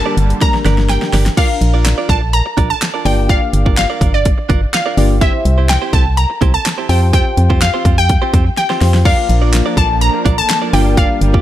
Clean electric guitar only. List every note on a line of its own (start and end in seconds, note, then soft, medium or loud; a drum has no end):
0.06 0.16 D4 medium
0.06 0.16 G4 medium
0.06 0.16 A#4 medium
0.06 0.17 D5 loud
0.17 muted clean electric guitar stroke medium
0.30 muted clean electric guitar stroke soft
0.41 muted clean electric guitar stroke soft
0.54 muted clean electric guitar stroke soft
0.65 0.81 D4 medium
0.65 0.77 G4 medium
0.65 0.77 A#4 loud
0.65 0.77 D5 medium
0.78 muted clean electric guitar stroke medium
1.02 muted clean electric guitar stroke medium
1.13 1.29 D4 medium
1.13 1.25 G4 medium
1.13 1.25 A#4 loud
1.13 1.25 D5 loud
1.26 muted clean electric guitar stroke medium
1.37 1.53 D4 medium
1.37 1.49 F4 loud
1.37 1.49 A#4 medium
1.37 1.49 D5 loud
1.50 muted clean electric guitar stroke soft
1.61 muted clean electric guitar stroke soft
1.74 1.84 D4 medium
1.74 1.84 F4 medium
1.74 1.84 A#4 medium
1.74 1.85 D5 medium
1.85 muted clean electric guitar stroke soft
1.98 2.08 D4 medium
1.98 2.08 F4 medium
1.98 2.09 A#4 medium
1.98 2.09 D5 medium
2.09 2.22 D4 medium
2.09 2.21 F4 medium
2.09 2.21 A#4 medium
2.09 2.21 D5 medium
2.22 muted clean electric guitar stroke soft
2.46 muted clean electric guitar stroke medium
2.57 2.73 D4 medium
2.57 2.69 F4 loud
2.57 2.69 A#4 loud
2.57 2.69 D5 loud
2.70 muted clean electric guitar stroke soft
2.81 muted clean electric guitar stroke soft
2.94 3.04 D4 medium
2.94 3.04 F4 medium
2.94 3.05 A#4 medium
2.94 3.05 D5 medium
3.05 3.21 D4 medium
3.05 3.17 F4 medium
3.05 3.17 A#4 medium
3.05 3.17 D5 loud
3.29 3.45 D4 medium
3.29 3.42 F4 medium
3.29 3.41 A#4 medium
3.29 3.41 D5 medium
3.42 muted clean electric guitar stroke soft
3.53 muted clean electric guitar stroke soft
3.66 3.76 D4 medium
3.66 3.76 F4 medium
3.66 3.77 A#4 medium
3.66 3.77 D5 medium
3.90 4.00 D4 medium
3.90 4.00 F4 medium
3.90 4.01 A#4 medium
3.90 4.01 D5 medium
4.01 4.14 D4 medium
4.01 4.13 F4 medium
4.01 4.13 A#4 medium
4.01 4.13 D5 medium
4.14 muted clean electric guitar stroke soft
4.38 muted clean electric guitar stroke soft
4.49 4.65 D4 medium
4.49 4.62 F4 loud
4.49 4.61 A#4 loud
4.49 4.61 D5 loud
4.62 muted clean electric guitar stroke soft
4.73 muted clean electric guitar stroke soft
4.86 4.96 D4 medium
4.86 4.96 F4 medium
4.86 4.97 A#4 medium
4.86 4.97 D5 medium
4.97 5.10 D4 medium
4.97 5.09 F4 medium
4.97 5.09 A#4 medium
4.97 5.09 D5 medium
5.10 muted clean electric guitar stroke soft
5.21 5.37 C4 medium
5.21 5.34 E4 loud
5.21 5.33 G4 medium
5.21 5.33 C5 loud
5.34 muted clean electric guitar stroke soft
5.45 muted clean electric guitar stroke soft
5.58 5.68 C4 medium
5.58 5.68 E4 medium
5.58 5.69 G4 medium
5.58 5.69 C5 medium
5.69 muted clean electric guitar stroke soft
5.82 5.92 C4 medium
5.82 5.92 E4 medium
5.82 5.93 G4 medium
5.82 5.93 C5 medium
5.93 6.06 C4 medium
5.93 6.05 E4 medium
5.93 6.05 G4 medium
5.93 6.05 C5 medium
6.06 muted clean electric guitar stroke medium
6.30 muted clean electric guitar stroke soft
6.41 6.57 C4 medium
6.41 6.53 E4 loud
6.41 6.53 G4 loud
6.41 6.53 C5 loud
6.54 muted clean electric guitar stroke soft
6.65 muted clean electric guitar stroke soft
6.78 6.88 C4 medium
6.78 6.89 E4 medium
6.78 6.89 G4 medium
6.78 6.89 C5 medium
6.89 7.05 C4 medium
6.89 7.01 F4 loud
6.89 7.01 G4 medium
6.89 7.01 C5 loud
7.02 muted clean electric guitar stroke medium
7.13 7.29 C4 medium
7.13 7.25 F4 medium
7.13 7.25 G4 medium
7.13 7.25 C5 loud
7.26 muted clean electric guitar stroke soft
7.37 muted clean electric guitar stroke soft
7.50 7.60 C4 medium
7.50 7.60 F4 medium
7.50 7.61 G4 medium
7.50 7.61 C5 medium
7.74 7.84 C4 medium
7.74 7.84 F4 medium
7.74 7.85 G4 medium
7.74 7.85 C5 medium
7.85 7.98 C4 medium
7.85 7.97 F4 medium
7.85 7.97 G4 medium
7.85 7.97 C5 medium
7.98 muted clean electric guitar stroke soft
8.09 muted clean electric guitar stroke soft
8.22 8.32 C4 medium
8.22 8.32 F4 medium
8.22 8.33 G4 medium
8.22 8.33 C5 medium
8.33 8.46 C4 medium
8.33 8.45 F4 medium
8.33 8.45 G4 medium
8.33 8.45 C5 medium
8.46 muted clean electric guitar stroke soft
8.57 muted clean electric guitar stroke soft
8.70 8.80 C4 medium
8.70 8.80 F4 medium
8.70 8.81 G4 medium
8.70 8.81 C5 medium
8.81 8.94 C4 medium
8.81 8.93 F4 medium
8.81 8.93 G4 medium
8.81 8.93 C5 medium
8.94 muted clean electric guitar stroke medium
9.05 9.21 D4 medium
9.05 9.17 F4 medium
9.05 9.17 A#4 medium
9.05 9.17 D5 loud
9.18 muted clean electric guitar stroke medium
9.29 muted clean electric guitar stroke soft
9.42 9.52 D4 medium
9.42 9.52 F4 medium
9.42 9.52 A#4 medium
9.42 9.53 D5 medium
9.53 muted clean electric guitar stroke soft
9.66 9.76 D4 medium
9.66 9.76 F4 medium
9.66 9.77 A#4 medium
9.66 9.77 D5 medium
9.77 9.90 D4 medium
9.77 9.89 F4 medium
9.77 9.89 A#4 medium
9.77 9.89 D5 medium
9.90 muted clean electric guitar stroke soft
10.14 muted clean electric guitar stroke soft
10.25 10.41 D4 medium
10.25 10.37 F4 medium
10.25 10.37 A#4 medium
10.25 10.37 D5 loud
10.38 muted clean electric guitar stroke soft
10.49 muted clean electric guitar stroke soft
10.62 10.72 D4 medium
10.62 10.72 F4 medium
10.62 10.73 A#4 medium
10.62 10.73 D5 medium
10.73 10.89 A#3 medium
10.73 10.85 F4 medium
10.73 10.85 G4 loud
10.73 10.85 D5 loud
10.86 muted clean electric guitar stroke medium
10.97 11.13 A#3 medium
10.97 11.09 F4 medium
10.97 11.09 G4 medium
10.97 11.09 D5 loud
11.10 muted clean electric guitar stroke soft
11.21 muted clean electric guitar stroke soft
11.34 11.42 A#3 medium
11.34 11.42 F4 medium
11.34 11.42 G4 medium
11.34 11.42 D5 medium